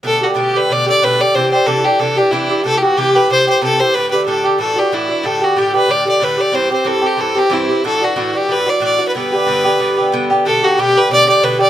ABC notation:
X:1
M:4/4
L:1/16
Q:"Swing" 1/4=184
K:G
V:1 name="Fiddle"
A2 F3/2 A/2 G2 B2 d2 d2 B2 d2 | c2 c2 A2 G2 A2 G2 E4 | A3/2 G/2 F2 G2 B2 c2 c2 A2 c2 | B2 B2 A2 G2 A2 G2 E4 |
A2 F2 G2 B2 d2 d2 B2 d2 | c2 c2 A2 G2 A2 G2 E4 | A2 F4 G2 B2 d2 d3 B | B12 z4 |
A2 F2 G2 B2 d2 d2 B2 d2 |]
V:2 name="Bouzouki"
[B,,D,A,G]2 [D,A,G]2 [B,,D,A,G]2 [D,A,G]2 [B,,D,A,G]2 [D,A,G]2 [B,,D,A,G]2 [D,A,G]2 | [C,E,DG]2 [E,DG]2 [C,E,DG]2 [E,DG]2 [C,E,DG]2 [E,DG]2 [C,E,DG]2 [E,DG]2 | [C,E,A,G]2 [E,A,G]2 [C,E,A,G]2 [E,A,G]2 [C,E,A,G]2 [E,A,G]2 [C,E,A,G]2 [E,A,G]2 | [A,,D,A,G]2 [D,A,G]2 [A,,D,A,G]2 [D,A,G]2 [A,,E,DF]2 [E,DF]2 [A,,E,DF]2 [E,DF]2 |
[A,,D,A,G]2 [D,A,G]2 [A,,D,A,G]2 [D,A,G]2 [A,,D,A,G]2 [D,A,G]2 [A,,D,A,G]2 [D,A,G]2 | [G,,E,CG]2 [E,CG]2 [G,,E,CG]2 [E,CG]2 [G,,E,CG]2 [E,CG]2 [G,,E,CG]2 [E,CG]2 | [A,,E,DF]2 [E,DF]2 [A,,E,DF]2 [E,DF]2 [A,,E,DF]2 [E,DF]2 [A,,E,DF]2 [E,DF]2 | [G,,D,B,G]2 [D,B,G]2 [G,,D,B,G]2 [D,B,G]2 [G,,D,B,G]2 [D,B,G]2 [G,,D,B,G]2 [D,B,G]2 |
[B,,D,A,G]2 [D,A,G]2 [B,,D,A,G]2 [D,A,G]2 [B,,D,A,G]2 [D,A,G]2 [B,,D,A,G]2 [D,A,G]2 |]